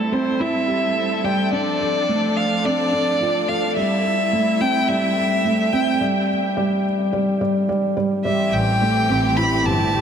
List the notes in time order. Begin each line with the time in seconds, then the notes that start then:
Already playing: G3 A3 C4 E4 A4
0.12 C4 C5
0.40 E4 E5
0.68 G4
1.24 G3 G5
1.52 F3 D4 D5
1.81 A4
2.09 A3
2.36 F5
2.65 C4 D5
2.92 D4
3.21 F4
3.48 A4 F5
3.76 G3 E4 E5
4.33 A3
4.61 C4 G5
4.88 G3 E5
5.45 A3
5.73 C4 G5
6.01 G3
6.57 G3
7.13 G3
7.41 G3
7.69 G3
7.97 G3
8.25 E3 G3 A3 C4 G4 E5
8.53 A1 G5
8.81 A3
9.09 A1 C4
9.37 E4 B5
9.65 G1 G4 A5
9.93 A1